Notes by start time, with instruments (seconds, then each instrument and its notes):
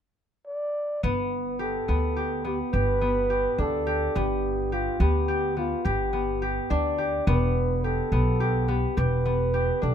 0.47 flugelhorn D5
1.03 upright bass G1, harp B3, flugelhorn B4
1.59 harp G4, flugelhorn A4
1.88 upright bass D2, harp B3
2.16 harp G4
2.44 harp B3, flugelhorn G4
2.73 upright bass G1, harp G4, flugelhorn B4
3.01 harp B3
3.30 harp G4
3.58 upright bass D2, harp D4, flugelhorn A4
3.87 harp G4
4.15 upright bass G1, harp B3, flugelhorn G4
4.72 flugelhorn F4, harp G4
5.00 upright bass D2, harp B3, flugelhorn G4
5.28 harp G4
5.57 harp B3, flugelhorn F4
5.85 upright bass G1, harp G4, flugelhorn G4
6.13 harp B3
6.42 harp G4
6.70 upright bass D2, harp D4, flugelhorn D5
6.98 harp G4
7.27 upright bass E1, harp B3, flugelhorn B4
7.84 harp G4, flugelhorn A4
8.12 upright bass B1, harp B3
8.40 harp G4
8.68 harp B3, flugelhorn G4
8.97 upright bass E1, harp G4, flugelhorn B4
9.25 harp B3
9.54 harp G4
9.82 upright bass B1, harp D4, flugelhorn A4